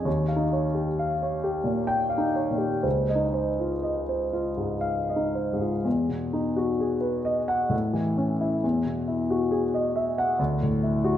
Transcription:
0.05 D#2 C#5
0.28 F5
0.36 D#4
0.53 C#5
0.74 G4
0.99 F5
1.22 C#5
1.44 G4
1.64 A#2
1.87 G5
2.10 F5
2.18 D#4
2.36 C#5
2.51 A#2
2.58 G4
2.83 C#2 C5
3.09 D#5
3.15 D#4
3.34 C5
3.60 F4
3.83 D#5
4.09 C5
4.33 F4
4.57 G#2
4.81 F5
5.09 D#5
5.16 D#4
5.35 C5
5.53 G#2
5.62 F4
5.84 E2
6.08 B2
6.33 D#4
6.56 F#4
6.80 G#4
7.01 B4
7.25 D#5
7.48 F#5
7.70 A2
7.93 E3
8.17 C#4
8.41 E4
8.64 E2
8.85 B2
9.08 E4
9.30 F#4
9.51 G#4
9.74 D#5
9.96 E5
10.18 F#5
10.39 D2
10.63 A2
10.83 E4
11.04 F#4

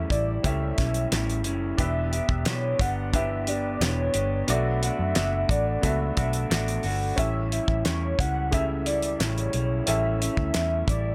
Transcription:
Already playing: A2 G3 C#4 G4 A4 E5
0.10 A1 G3 E4 D5, kick, closed hi-hat
0.43 C#2 A2 G3 C#4 E4 G4 A4 E5, kick, closed hi-hat
0.78 B1 G3 C#4 E4, kick, snare, closed hi-hat
0.94 closed hi-hat
1.11 A1 A2 G3 C#4 E4, snare, clap, closed hi-hat
1.30 closed hi-hat
1.44 F#1 G3 C#4 E4, closed hi-hat
1.77 E1 E3 B3 D4 G4 B4 E5, kick, closed hi-hat
2.11 B3 D4 G4 E5, closed hi-hat
2.29 E1, kick
2.46 B1 E3 B3 D4 G4 C#5, snare, clap, closed hi-hat
2.79 G1 B3 D4 G4 F#5, kick, closed hi-hat
3.13 E3 B3 D4 G4 B4 E5, kick, closed hi-hat
3.47 B3 D4 G4 D5, closed hi-hat
3.81 E1 E3 B3 D4 G4 C#5, snare, clap, closed hi-hat
4.14 G1 B3 D4 G4, closed hi-hat
4.47 B1 B2 A3 B3 D4 F#4 A4 D5 E5, closed hi-hat
4.82 A3 D4 F#4 E5, closed hi-hat
4.99 F#2
5.15 F#1 B2 A3 D4 F#4, snare, clap, closed hi-hat
5.49 A1 A3 D4 F#4 D5, kick, closed hi-hat
5.81 C#2 B2 A3 B3 D4 F#4 A4 E5, kick, closed hi-hat
6.17 B1 A3 D4 F#4, kick, closed hi-hat
6.33 closed hi-hat
6.50 A1 B2 A3 D4 F#4, snare, clap, closed hi-hat
6.68 closed hi-hat
6.83 G1 A3 D4 F#4, open hi-hat
7.16 A1 A2 G3 C#4 E4 G4 A4 E5, kick, closed hi-hat
7.51 G3 C#4 E4 E5, closed hi-hat
7.68 A1, kick
7.85 E2 A2 G3 C#4 E4 C#5, snare, clap, closed hi-hat
8.19 C#2 G3 C#4 E4 F#5, kick, closed hi-hat
8.51 A2 C#3 G3 C#4 E4 G4 A4 E5, kick, closed hi-hat
8.86 G3 E4 D5, closed hi-hat
9.02 closed hi-hat
9.20 A1 A2 G3 C#4 E4 C#5, snare, clap, closed hi-hat
9.38 closed hi-hat
9.53 B1 G3 C#4 E4, closed hi-hat
9.86 A1 A2 G3 C#4 E4 G4 A4 E5, closed hi-hat
10.20 G3 C#4 E4 E5, closed hi-hat
10.37 D2, kick
10.54 E2 A2 G3 C#4 E4, snare, clap, closed hi-hat
10.87 A1 G3 E4 D5, kick, closed hi-hat

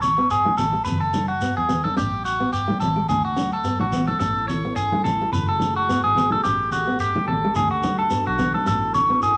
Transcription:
Already playing: A1
0.02 C#5, low conga, shekere
0.18 B3
0.30 G#4, shekere
0.45 A3, high conga
0.57 A1 A4, low conga, shekere
0.73 muted steel-string acoustic guitar stroke
0.85 F#1 B4, low conga, shekere
1.01 A4
1.13 C#4, high conga, shekere
1.28 F#4
1.41 B3, shekere
1.57 E2 G#4
1.69 B3, low conga, shekere
1.84 A4, high conga
1.97 A1 C#4 G4, shekere
2.25 F#4, shekere
2.40 B3
2.53 G4, shekere
2.68 A3, high conga
2.80 A1 A4, low conga, shekere
2.96 G#3
3.09 D2 G#4, low conga, shekere
3.25 F#4
3.36 C#4, high conga, shekere
3.53 A4
3.64 B3, shekere
3.80 A1 F#4, high conga
3.92 B3, low conga, shekere
4.08 A4, high conga
4.20 A1 C#4 E4 A4, shekere
4.48 C#5, low conga, shekere
4.65 B3
4.76 G#4, shekere
4.92 A3, high conga
5.04 A1 A4, low conga, shekere
5.21 muted steel-string acoustic guitar stroke
5.32 F#1 A3 F#4 G#4 B4, low conga, shekere
5.49 A4
5.60 C#4, high conga, shekere
5.76 F#4
5.89 B3, shekere
6.04 G#1 G#4
6.15 B3, low conga, shekere
6.31 A4, high conga
6.44 A1 C#4 G4 A4, shekere
6.71 F#4, low conga, shekere
6.87 B3
6.99 G4, shekere
7.16 A3, high conga
7.28 A1 A4, low conga
7.44 G#3
7.55 D2 D4 F#4 G#4, low conga, shekere
7.71 F#4
7.83 C#4, high conga, shekere
7.99 A4
8.10 B3, shekere
8.27 B1 F#4
8.39 B3, low conga, shekere
8.54 A4, high conga
8.66 A1 C#4 E4 A4, shekere
8.94 C#5, low conga, shekere
9.10 B3
9.22 G#4, shekere

